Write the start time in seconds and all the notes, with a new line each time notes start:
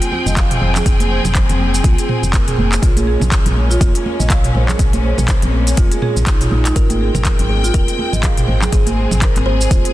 Already playing: F3 C4 G#4 G5
0.02 closed hi-hat, cabasa
0.12 muted conga, high conga
0.26 F1 D#5, high conga, low conga, cabasa
0.37 kick, clap, closed hi-hat, muted conga, cabasa
0.51 closed hi-hat, mid tom, cabasa
0.61 F1 C5, muted conga
0.76 G#4, clap, low conga, cabasa
0.86 F1, kick, closed hi-hat, muted conga, cabasa
1.00 closed hi-hat, high conga, cabasa
1.11 C5
1.24 F1, mid tom, muted conga, high conga, low conga, cabasa
1.35 C5, kick, clap, closed hi-hat, cabasa
1.49 F1 C4, closed hi-hat, muted conga, low conga, cabasa
1.59 high conga
1.74 muted conga, cabasa
1.83 C2 F4, kick, closed hi-hat, high conga, cabasa
1.98 G#4, closed hi-hat, cabasa
2.09 C5, mid tom, muted conga
2.23 F1, cabasa
2.33 A#4, kick, clap, closed hi-hat, muted conga, high conga, cabasa
2.48 G#4, closed hi-hat, mid tom, cabasa
2.58 F1, muted conga, high conga
2.72 clap, cabasa
2.82 A#1 G#3 A#3 C#4 F4, kick, closed hi-hat, muted conga, cabasa
2.97 G#4, closed hi-hat, high conga, cabasa
3.07 G#4
3.20 A#1, mid tom, muted conga, high conga, low conga, cabasa
3.32 kick, clap, closed hi-hat, cabasa
3.46 A#1, closed hi-hat, muted conga, low conga, cabasa
3.56 high conga
3.70 F4, muted conga, cabasa
3.81 F1, kick, closed hi-hat, high conga, cabasa
3.95 closed hi-hat, cabasa
4.06 muted conga, high conga
4.20 A#1 D#5, high conga, low conga, cabasa
4.30 kick, clap, closed hi-hat, muted conga, cabasa
4.44 closed hi-hat, mid tom, cabasa
4.55 A#1 C5, muted conga
4.69 G#4, clap, low conga, cabasa
4.79 A#1, kick, closed hi-hat, muted conga, cabasa
4.93 closed hi-hat, high conga, cabasa
5.04 C5
5.18 A#1, mid tom, muted conga, high conga, low conga, cabasa
5.28 C5, kick, clap, closed hi-hat, cabasa
5.42 A#1 C4, closed hi-hat, muted conga, low conga, cabasa
5.52 high conga
5.67 closed hi-hat, muted conga, cabasa
5.77 F1 F4, kick, closed hi-hat, high conga, cabasa
5.92 G#4, closed hi-hat, cabasa
6.02 G#4, mid tom, muted conga
6.16 A#1, cabasa
6.26 D#4, kick, clap, closed hi-hat, muted conga, high conga, cabasa
6.41 F4, closed hi-hat, mid tom, cabasa
6.51 A#1 D#4, muted conga, high conga
6.65 D#4, clap, closed hi-hat, cabasa
6.76 G#1 C4 A#4 G5, kick, closed hi-hat, muted conga, cabasa
6.90 G#4, closed hi-hat, high conga, cabasa
7.01 G#4
7.15 G#1 A#4, mid tom, muted conga, high conga, low conga, cabasa
7.25 kick, clap, closed hi-hat, cabasa
7.39 G#1, closed hi-hat, muted conga, low conga, cabasa
7.49 G#4, high conga
7.63 F4, muted conga, cabasa
7.74 D#1 A#4, kick, closed hi-hat, high conga, cabasa
7.88 closed hi-hat, cabasa
7.99 muted conga, high conga
8.13 G#1 D#5, high conga, low conga, cabasa
8.23 G#4, kick, clap, closed hi-hat, muted conga, cabasa
8.37 closed hi-hat, mid tom, cabasa
8.48 G#1 C5, muted conga
8.62 G#4, clap, low conga, cabasa
8.72 G#1 G#4, kick, closed hi-hat, muted conga, cabasa
8.87 closed hi-hat, high conga, cabasa
8.97 C5
9.11 G#1, mid tom, muted conga, high conga, low conga, cabasa
9.21 A#4 C5, kick, clap, closed hi-hat, cabasa
9.36 G#1 C4, clap, closed hi-hat, muted conga, low conga, cabasa
9.46 C5, high conga
9.60 muted conga, cabasa
9.71 D#1 F4, kick, closed hi-hat, high conga, cabasa
9.85 G#4, closed hi-hat, cabasa